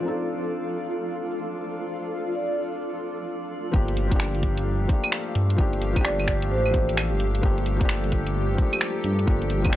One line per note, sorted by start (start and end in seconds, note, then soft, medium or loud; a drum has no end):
0.00 3.70 F3 medium
0.00 3.71 C4 medium
0.00 3.75 D4 medium
0.00 3.70 F4 medium
0.00 3.70 A4 medium
0.00 3.74 D5 medium
0.00 3.70 F5 medium
0.05 3.72 D#4 medium
0.05 3.73 A4 medium
2.35 2.60 D5 medium
3.72 4.88 G1 loud
3.72 4.06 F3 medium
3.72 9.76 A3 medium
3.72 4.07 A#3 medium
3.72 4.08 D4 medium
3.72 9.76 G4 medium
3.72 9.76 A4 medium
3.72 7.39 F5 medium
3.72 kick loud
3.76 4.09 G4 loud
3.88 closed hi-hat soft
3.97 open hi-hat medium
4.08 4.84 F3 loud
4.08 4.87 A#3 medium
4.08 kick loud
4.08 closed hi-hat medium
4.13 4.88 D4 medium
4.13 4.89 G4 loud
4.20 finger snap loud
4.35 closed hi-hat soft
4.43 kick medium
4.43 open hi-hat medium
4.58 closed hi-hat medium
4.85 5.54 F3 medium
4.85 5.56 A#3 medium
4.85 kick loud
4.85 open hi-hat medium
4.91 5.57 D4 medium
4.91 5.59 G4 medium
5.04 closed hi-hat medium
5.04 claves medium
5.12 finger snap loud
5.35 5.57 G2 medium
5.35 open hi-hat medium
5.50 closed hi-hat medium
5.56 6.52 G1 medium
5.56 5.92 F3 medium
5.56 5.92 A#3 medium
5.56 5.93 D4 medium
5.56 5.94 G4 loud
5.56 kick loud
5.73 closed hi-hat soft
5.82 open hi-hat medium
5.93 6.69 F3 loud
5.93 6.71 A#3 medium
5.93 kick loud
5.93 closed hi-hat medium
5.93 claves soft
5.98 6.73 D4 medium
5.98 6.74 G4 loud
6.05 6.29 D5 medium
6.05 finger snap loud
6.20 closed hi-hat soft
6.20 claves soft
6.28 finger snap medium
6.28 kick medium
6.28 open hi-hat medium
6.42 closed hi-hat medium
6.51 7.13 A1 medium
6.51 6.60 C5 medium
6.65 6.71 C5 medium
6.65 claves soft
6.70 7.39 F3 medium
6.70 7.40 A#3 medium
6.70 kick loud
6.70 open hi-hat medium
6.75 7.42 D4 medium
6.75 7.43 G4 medium
6.89 closed hi-hat medium
6.97 finger snap loud
6.97 claves medium
7.12 7.42 G1 loud
7.20 open hi-hat medium
7.35 closed hi-hat medium
7.41 8.57 G1 medium
7.41 7.75 F3 medium
7.41 7.77 A#3 medium
7.41 7.78 D4 medium
7.41 7.78 G4 loud
7.41 9.76 G5 medium
7.41 kick loud
7.58 closed hi-hat soft
7.66 open hi-hat medium
7.77 8.53 F3 loud
7.77 8.55 A#3 medium
7.81 8.57 D4 medium
7.81 kick loud
7.81 closed hi-hat medium
7.85 8.58 G4 loud
7.89 finger snap loud
8.04 closed hi-hat soft
8.12 kick medium
8.12 open hi-hat medium
8.27 closed hi-hat medium
8.54 9.23 F3 medium
8.54 9.25 A#3 medium
8.54 open hi-hat medium
8.58 9.26 D4 medium
8.58 kick loud
8.62 9.28 G4 medium
8.73 closed hi-hat medium
8.73 claves medium
8.81 finger snap loud
9.04 9.26 G2 medium
9.04 open hi-hat medium
9.19 closed hi-hat medium
9.26 9.76 G1 medium
9.26 9.61 F3 medium
9.26 9.62 A#3 medium
9.26 9.62 D4 medium
9.26 9.63 G4 loud
9.26 kick loud
9.42 closed hi-hat soft
9.50 open hi-hat medium
9.62 9.76 F3 loud
9.62 9.76 A#3 medium
9.62 kick loud
9.62 closed hi-hat medium
9.62 claves soft
9.67 9.76 D4 medium
9.67 9.76 G4 loud
9.73 finger snap loud